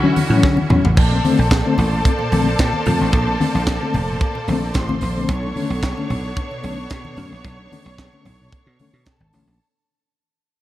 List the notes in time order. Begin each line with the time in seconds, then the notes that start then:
Already playing: D3 C#4 E4 F#4
0.03 E3 F#3 C#4
0.16 D3, open hi-hat, high conga
0.30 A2 E3 F#3 C#4
0.43 D3 F#3 C#4, kick, snare
0.57 D3, muted conga, high conga
0.70 E2 F#3 C#4, mid tom, high conga, low conga
0.84 A1, floor tom
0.97 A#1 A#2 A#3 A4 C5 D5 A5, kick, crash, muted conga
1.12 A3 C4
1.24 D3 A3 C4, open hi-hat, high conga
1.39 A#1
1.51 kick, snare, clap, closed hi-hat
1.66 D3 A3 C4
1.78 A1, open hi-hat, low conga
1.93 A#2
2.05 A3 C4, kick, closed hi-hat, muted conga
2.19 A#2, muted conga
2.32 A#1 D3 A3 C4, open hi-hat, high conga
2.59 A#2, kick, snare, clap, closed hi-hat
2.73 high conga
2.86 F2 D3 A3 C4, open hi-hat, high conga, low conga
3.01 A1 A3 C4
3.13 A#1 A#2, kick, closed hi-hat, muted conga
3.28 A3 C4, muted conga
3.40 D3 A3 C4, open hi-hat, high conga
3.55 A#1
3.67 kick, snare, clap, closed hi-hat
3.81 D3 A3 C4, muted conga
3.94 F1, open hi-hat, low conga
4.09 A#2
4.21 A3 C4, kick, closed hi-hat, muted conga
4.35 A#2, muted conga
4.48 A#1 D3 A3 C4, open hi-hat, high conga
4.74 A1 C5 C6, kick, snare, clap, closed hi-hat, muted conga
4.89 D3 A3 C4, muted conga, high conga
5.01 A#1 A#2, snare, open hi-hat, high conga, low conga
5.17 D3 A3 C4
5.29 B1 B2 B3 D4 C#5 C#6, kick, closed hi-hat, muted conga
5.43 A3 C#4, muted conga
5.56 D3 A3 C#4, open hi-hat, high conga
5.70 B1
5.83 kick, snare, clap, closed hi-hat, muted conga
5.97 D3 A3 C#4, muted conga
6.10 B1, open hi-hat, low conga
6.24 B2
6.37 A3 C#4, kick, closed hi-hat, muted conga
6.51 B2, muted conga
6.63 B1 D3 A3 C#4, open hi-hat, high conga
6.90 B2 A3 C#4, kick, snare, clap, closed hi-hat
7.05 B2, muted conga, high conga
7.17 F#2 D3 A3 C#4, snare, open hi-hat, high conga, low conga
7.32 A#1
7.44 B1 B2, kick, closed hi-hat, muted conga
7.58 A3 C#4, muted conga
7.72 D3 A3 C#4, open hi-hat, high conga
7.86 B1
7.98 kick, snare, clap, closed hi-hat, muted conga
8.13 D3 A3 C#4, muted conga
8.25 B1, open hi-hat, low conga
8.41 B2
8.52 A3 C#4, kick, closed hi-hat
8.66 B2, muted conga
8.79 D3 A3 C#4, open hi-hat, high conga
8.93 B2
9.05 B2 A4 A5, kick, snare, clap, closed hi-hat, muted conga
9.20 G#1, muted conga, high conga
9.33 A1 D3 A3 C#4, snare, open hi-hat, high conga, low conga
9.47 A#1